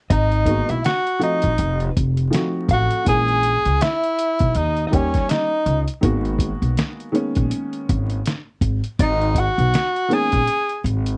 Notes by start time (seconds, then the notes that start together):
0.10 G#1 D#4 D#5, kick, closed hi-hat
0.32 closed hi-hat
0.46 D#3 G#3 A#3 B3 F#4, kick, closed hi-hat
0.69 B1 E4 E5, closed hi-hat
0.84 F#4 F#5, snare, closed hi-hat
1.07 closed hi-hat
1.19 F3 A3 C4 D#4 F#4, closed hi-hat
1.23 D#5
1.42 A#1, kick, closed hi-hat
1.58 F1, closed hi-hat
1.80 closed hi-hat
1.97 F1, kick, closed hi-hat
2.17 closed hi-hat
2.30 F3 A3 C4 D#4 F#4, closed hi-hat
2.35 snare
2.69 A1 F#5, kick, closed hi-hat
2.73 F#4
2.91 closed hi-hat
3.05 A#1 E3 G#3 A#3 C#4 G#4 G#5, kick, closed hi-hat
3.28 closed hi-hat
3.43 closed hi-hat
3.65 C#2, closed hi-hat
3.81 E4 E5, snare, closed hi-hat
4.03 closed hi-hat
4.19 closed hi-hat
4.39 B1, kick, closed hi-hat
4.55 D#2 D#4 D#5, closed hi-hat
4.77 closed hi-hat
4.87 D#3 D#4 D#5
4.92 D#2 G3 A#3 C#4 G4 C#5, kick, closed hi-hat
5.14 kick, snare, closed hi-hat
5.29 D#4 D#5, snare, closed hi-hat
5.66 C#2, closed hi-hat
5.88 closed hi-hat
6.01 G#1 D#3 G#3 A#3 B3 F#4, kick, closed hi-hat
6.25 closed hi-hat
6.39 kick, closed hi-hat
6.62 B1, closed hi-hat
6.77 snare, closed hi-hat
7.00 closed hi-hat
7.12 D#3 G#3 A#3 B3 C#4, closed hi-hat
7.35 A#1, kick, closed hi-hat
7.51 closed hi-hat
7.73 closed hi-hat
7.89 G#1, kick, closed hi-hat
8.10 closed hi-hat
8.26 snare, closed hi-hat
8.61 G#1, kick, closed hi-hat
8.84 closed hi-hat
8.99 G#1 D#4 D#5, kick, closed hi-hat
9.21 closed hi-hat
9.35 F#5, kick, closed hi-hat
9.40 F#4
9.58 B1, closed hi-hat
9.74 snare, closed hi-hat
9.96 closed hi-hat
10.08 D#3 G#3 A#3 B3 C#4, closed hi-hat
10.13 G#4 G#5
10.32 A#1, kick, closed hi-hat
10.47 closed hi-hat
10.69 closed hi-hat
10.84 G#1, closed hi-hat
11.06 closed hi-hat